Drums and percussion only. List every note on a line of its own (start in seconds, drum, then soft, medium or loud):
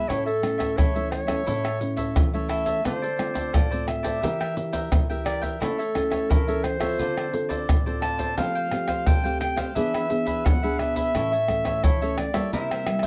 0.10 pandeiro medium
0.10 tamborim medium
0.10 maracas medium
0.10 surdo medium
0.27 pandeiro soft
0.27 maracas soft
0.43 pandeiro medium
0.43 tamborim medium
0.43 maracas medium
0.60 pandeiro medium
0.60 tamborim medium
0.60 maracas medium
0.60 surdo soft
0.78 pandeiro medium
0.78 tamborim medium
0.78 maracas medium
0.78 surdo medium
0.96 pandeiro soft
0.96 maracas soft
1.12 pandeiro medium
1.12 tamborim medium
1.28 pandeiro medium
1.28 tamborim medium
1.28 maracas medium
1.28 surdo soft
1.47 pandeiro medium
1.47 maracas medium
1.47 surdo medium
1.65 pandeiro soft
1.65 tamborim medium
1.65 maracas soft
1.81 pandeiro medium
1.81 maracas medium
1.97 pandeiro medium
1.97 maracas medium
1.97 surdo soft
2.16 pandeiro medium
2.16 tamborim medium
2.16 maracas loud
2.16 surdo loud
2.34 pandeiro soft
2.34 maracas soft
2.49 pandeiro medium
2.49 tamborim medium
2.49 maracas medium
2.66 pandeiro medium
2.66 maracas medium
2.66 surdo soft
2.85 pandeiro medium
2.85 tamborim medium
2.85 maracas medium
2.85 surdo medium
3.04 pandeiro soft
3.04 maracas soft
3.19 pandeiro medium
3.19 tamborim medium
3.19 maracas medium
3.35 pandeiro medium
3.35 tamborim medium
3.35 maracas medium
3.35 surdo soft
3.54 pandeiro medium
3.54 tamborim medium
3.54 maracas medium
3.54 surdo loud
3.72 pandeiro soft
3.72 maracas soft
3.88 pandeiro medium
3.88 tamborim medium
3.88 maracas medium
4.04 pandeiro medium
4.04 tamborim medium
4.04 maracas medium
4.04 surdo soft
4.23 pandeiro medium
4.23 maracas medium
4.23 surdo medium
4.41 pandeiro soft
4.41 tamborim medium
4.41 maracas soft
4.57 pandeiro medium
4.57 maracas medium
4.73 pandeiro medium
4.73 maracas medium
4.73 surdo soft
4.92 pandeiro loud
4.92 tamborim medium
4.92 maracas medium
4.92 surdo loud
5.10 pandeiro soft
5.10 maracas soft
5.26 pandeiro medium
5.26 tamborim medium
5.26 maracas medium
5.43 pandeiro medium
5.43 maracas medium
5.43 surdo soft
5.62 pandeiro medium
5.62 tamborim medium
5.62 maracas medium
5.62 surdo medium
5.79 pandeiro soft
5.79 maracas soft
5.95 pandeiro medium
5.95 tamborim medium
5.95 surdo soft
6.12 pandeiro medium
6.12 tamborim medium
6.12 maracas medium
6.12 surdo soft
6.31 pandeiro medium
6.31 tamborim medium
6.31 maracas medium
6.31 surdo loud
6.48 pandeiro soft
6.48 maracas soft
6.64 pandeiro medium
6.64 tamborim medium
6.64 maracas medium
6.80 pandeiro medium
6.80 tamborim medium
6.80 maracas medium
6.80 surdo soft
6.99 pandeiro medium
6.99 maracas medium
6.99 surdo medium
7.17 pandeiro soft
7.17 tamborim medium
7.17 maracas soft
7.34 pandeiro medium
7.34 maracas medium
7.50 pandeiro medium
7.50 maracas medium
7.50 surdo soft
7.69 pandeiro medium
7.69 tamborim medium
7.69 maracas loud
7.69 surdo loud
7.87 pandeiro soft
7.87 maracas soft
8.02 pandeiro medium
8.02 tamborim medium
8.02 maracas medium
8.19 pandeiro medium
8.19 maracas medium
8.19 surdo soft
8.38 pandeiro medium
8.38 tamborim medium
8.38 maracas medium
8.38 surdo medium
8.55 pandeiro soft
8.55 maracas soft
8.71 pandeiro medium
8.71 tamborim medium
8.88 pandeiro medium
8.88 tamborim medium
8.88 maracas medium
8.88 surdo soft
9.06 pandeiro medium
9.06 tamborim medium
9.06 maracas medium
9.06 surdo loud
9.25 pandeiro soft
9.25 maracas soft
9.41 pandeiro medium
9.41 tamborim medium
9.41 maracas medium
9.58 pandeiro medium
9.58 tamborim medium
9.58 maracas medium
9.58 surdo soft
9.76 pandeiro medium
9.76 maracas medium
9.76 surdo medium
9.94 pandeiro soft
9.94 tamborim medium
9.94 maracas soft
10.10 pandeiro medium
10.10 maracas medium
10.27 pandeiro medium
10.27 maracas medium
10.27 surdo soft
10.46 pandeiro medium
10.46 tamborim medium
10.46 maracas medium
10.46 surdo loud
10.64 pandeiro soft
10.64 maracas soft
10.79 pandeiro medium
10.79 tamborim medium
10.96 pandeiro medium
10.96 maracas medium
10.96 surdo soft
11.15 pandeiro medium
11.15 tamborim medium
11.15 maracas medium
11.15 surdo medium
11.33 pandeiro soft
11.33 maracas soft
11.48 pandeiro medium
11.48 tamborim medium
11.48 surdo soft
11.65 pandeiro medium
11.65 tamborim medium
11.65 maracas medium
11.65 surdo soft
11.84 pandeiro medium
11.84 tamborim medium
11.84 maracas medium
11.84 surdo loud
12.02 pandeiro soft
12.02 maracas soft
12.18 pandeiro medium
12.18 tamborim medium
12.34 pandeiro medium
12.34 tamborim medium
12.34 maracas medium
12.34 surdo soft
12.53 pandeiro medium
12.53 maracas medium
12.53 surdo medium
12.71 pandeiro soft
12.71 tamborim medium
12.71 maracas soft
12.86 pandeiro medium
12.86 tamborim loud
12.86 maracas medium
12.99 pandeiro medium
12.99 tamborim medium
12.99 maracas medium
12.99 surdo soft